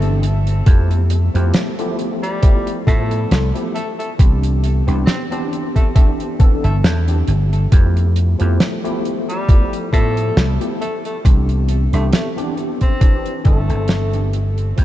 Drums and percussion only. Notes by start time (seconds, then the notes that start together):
0.02 closed hi-hat
0.23 closed hi-hat
0.47 closed hi-hat
0.66 kick, closed hi-hat
0.91 closed hi-hat
1.10 closed hi-hat
1.35 closed hi-hat
1.54 snare, closed hi-hat
1.79 closed hi-hat
1.99 closed hi-hat
2.24 closed hi-hat
2.43 kick, closed hi-hat
2.67 closed hi-hat
2.87 kick, closed hi-hat
3.11 closed hi-hat
3.31 snare, closed hi-hat
3.56 closed hi-hat
3.76 closed hi-hat
4.00 closed hi-hat
4.19 kick, closed hi-hat
4.43 closed hi-hat
4.64 closed hi-hat
4.88 closed hi-hat
5.07 snare, closed hi-hat
5.32 closed hi-hat
5.53 closed hi-hat
5.76 kick, closed hi-hat
5.96 kick, closed hi-hat
6.20 closed hi-hat
6.40 kick, closed hi-hat
6.64 closed hi-hat
6.84 snare, closed hi-hat
7.08 closed hi-hat
7.28 closed hi-hat
7.53 closed hi-hat
7.72 kick, closed hi-hat
7.97 closed hi-hat
8.16 closed hi-hat
8.40 closed hi-hat
8.60 snare, closed hi-hat
8.85 closed hi-hat
9.05 closed hi-hat
9.30 closed hi-hat
9.49 kick, closed hi-hat
9.73 closed hi-hat
9.93 kick, closed hi-hat
10.17 closed hi-hat
10.37 snare, closed hi-hat
10.61 closed hi-hat
10.82 closed hi-hat
11.05 closed hi-hat
11.25 kick, closed hi-hat
11.49 closed hi-hat
11.68 closed hi-hat
11.93 closed hi-hat
12.13 snare, closed hi-hat
12.38 closed hi-hat
12.57 closed hi-hat
12.81 kick, closed hi-hat
13.01 kick, closed hi-hat
13.26 closed hi-hat
13.45 kick, closed hi-hat
13.70 closed hi-hat
13.88 snare, closed hi-hat
14.13 closed hi-hat
14.33 closed hi-hat
14.58 closed hi-hat
14.78 kick, closed hi-hat